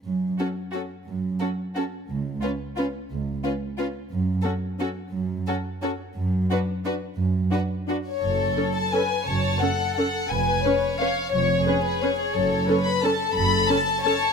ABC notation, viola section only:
X:1
M:3/4
L:1/8
Q:1/4=175
K:F#m
V:1 name="Viola section"
z2 C2 C2 | z2 C2 C2 | z2 C2 C2 | z2 C2 C2 |
z2 C2 C2 | z2 C2 C2 | z2 D2 D2 | z2 D2 D2 |
z2 [CA]2 [CA]2 | z2 [CA]2 [CA]2 | z2 [CB]2 [CB]2 | z2 [CB]2 [CB]2 |
z2 [CA]2 [CA]2 | z2 [CA]2 [CA]2 |]